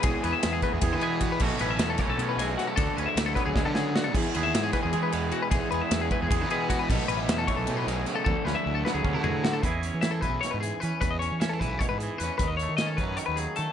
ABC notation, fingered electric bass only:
X:1
M:7/8
L:1/16
Q:1/4=153
K:E
V:1 name="Fingered electric bass" clef=bass
B,,, z E,, z E,,2 z E,, E,, E,4- E, | B,,, z A,,,2 E,,2 z B,,, B,,2 B,,,2 z2 | =D,, z D,, z D,,2 z D,, D,, =D,4- D, | E,, z D,,2 G,,2 z E,, E,2 E,,2 z2 |
B,,, z E,, z E,,2 z E,, E,, E,4- E, | B,,, z A,,,2 E,,2 z B,,, B,,2 B,,,2 z2 | =D,, z D,, z D,,2 z D,, D,, =D,4- D, | E,,3 E,3 B,,,2 z G,,2 z E, z |
E,,3 E,3 B,,,2 z G,,2 z E,, z | D,,3 D,3 F,,2 z D,,2 z D, z |]